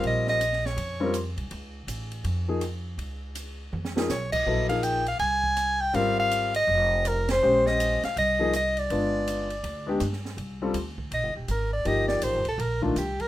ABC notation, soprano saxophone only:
X:1
M:4/4
L:1/8
Q:"Swing" 1/4=162
K:Bbdor
V:1 name="Soprano saxophone"
e e2 d3 z2 | z8 | z6 d e- | e f g f a3 g |
f f2 e3 B c- | c e2 f e2 e =d- | =d6 z2 | [K:Cdor] z4 e G B d |
e d c A B D G B |]